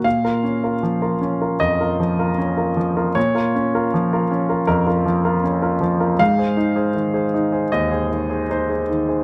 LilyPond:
\new Staff \with { instrumentName = "Grand piano" } { \time 4/4 \key aes \mixolydian \tempo 4 = 78 << { f''2 ees''2 | des''2 bes'4. r8 | f''2 ees''4 c''4 | } \\ { bes,16 <f' bes'>16 des'16 <f' bes'>16 f16 <f' bes'>16 des'16 <f' bes'>16 f,16 <f' bes'>16 f16 <f' bes'>16 des'16 <f' bes'>16 f16 <f' bes'>16 | bes,16 <f' bes'>16 des'16 <f' bes'>16 f16 <f' bes'>16 des'16 <f' bes'>16 f,16 <f' bes'>16 f16 <f' bes'>16 des'16 <f' bes'>16 f16 <f' bes'>16 | aes,16 <aes' c''>16 ees'16 <aes' c''>16 ees16 <aes' c''>16 ees'16 <aes' c''>16 ees,16 <aes' c''>16 ees16 <aes' c''>16 ees'16 <aes' c''>16 ees16 <aes' c''>16 | } >> }